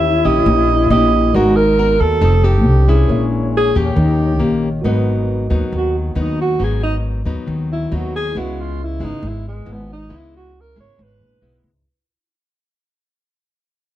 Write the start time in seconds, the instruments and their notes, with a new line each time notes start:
Already playing: upright bass D#2, nylon-string guitar D#3 C#4 G4, tine electric piano E4 G4 A#4 C#5, alto flute E4, alto saxophone E5
0.25 upright bass A#1, nylon-string guitar C#4 E4 G4, alto saxophone D#5
0.46 upright bass A#1, nylon-string guitar A#2
0.90 upright bass A#1, nylon-string guitar C#4 E4 G4, alto saxophone D#5
1.31 upright bass G#1, nylon-string guitar G#3 B3, alto flute D#4, tine electric piano F#4 A#4, alto saxophone F#4
1.35 nylon-string guitar F#4 A#4, tine electric piano D#5
1.56 alto saxophone A#4
1.79 nylon-string guitar B3 F#4 A#4
2.00 upright bass D#2, alto saxophone A4
2.19 upright bass F1, nylon-string guitar F3 C4 D#4 A4, alto flute C4, tine electric piano G4 A4
2.23 tine electric piano C5 D#6
2.44 nylon-string guitar C4 D#4 A4, alto saxophone G4
2.65 upright bass C2, alto flute D4
2.88 nylon-string guitar G#3 C#4 E4, alto saxophone G#4
3.06 upright bass A#1, nylon-string guitar A#2, alto flute C#4, tine electric piano G#4 A#4 C#5
3.12 tine electric piano E5
3.57 alto saxophone G#4
3.75 upright bass E2, nylon-string guitar A#3 C#4 G4, alto saxophone G4
3.93 upright bass D#2, nylon-string guitar D#3, alto flute D#4, tine electric piano G4 A#4
3.97 tine electric piano C#5 D#5
4.39 upright bass A#1, nylon-string guitar A#3 C#4 G4, alto flute A#3
4.82 upright bass G#1, nylon-string guitar G#2 F#3 B3 D#4, tine electric piano F#4 A#4 B4
4.88 tine electric piano D#5
5.50 upright bass D#2, nylon-string guitar F#3 B3 D#4
5.72 upright bass D#2, nylon-string guitar D#3
5.77 alto saxophone F#4
5.98 alto saxophone A#3
6.15 upright bass D#2, nylon-string guitar F#3 B3 D#4
6.21 alto saxophone D#4
6.41 alto saxophone F#4
6.59 upright bass G#1, nylon-string guitar G#2 F#3 B3 D#4
6.64 alto saxophone G#4
6.83 alto saxophone D#4
7.25 upright bass D#2, nylon-string guitar F#3 B3 D#4
7.47 upright bass D#2, nylon-string guitar D#3
7.72 alto saxophone E4
7.89 upright bass D#2, nylon-string guitar F#3 B3 D#4, tine electric piano F#4 A#4 B4 D#5
7.96 alto saxophone F#4
8.16 alto saxophone G#4
8.31 upright bass C#2, tine electric piano E4 G#4
8.35 nylon-string guitar C#3 G#3 B3 E4, alto saxophone F#4, tine electric piano B4 D#5
8.60 alto saxophone F4
8.84 alto saxophone E4
9.00 upright bass G#1, nylon-string guitar G#3 B3 E4
9.04 alto saxophone D#4
9.22 upright bass G#1, nylon-string guitar G#2
9.28 alto saxophone E4
9.48 alto saxophone G#3
9.66 upright bass G#1, nylon-string guitar G#3 B3 E4
9.73 alto saxophone B3
9.93 alto saxophone D#4
10.09 upright bass C#2, nylon-string guitar C#3 G#3 B3 E4
10.17 alto saxophone E4
10.37 alto saxophone F#4
10.61 alto saxophone A#4
10.76 upright bass G#1, nylon-string guitar G#3 B3 E4
10.80 alto saxophone C#5
10.97 upright bass G#1, nylon-string guitar G#2
11.03 alto saxophone B4
11.21 upright bass A#1
11.42 upright bass B1, nylon-string guitar G#3 B3 E4
11.64 upright bass C#2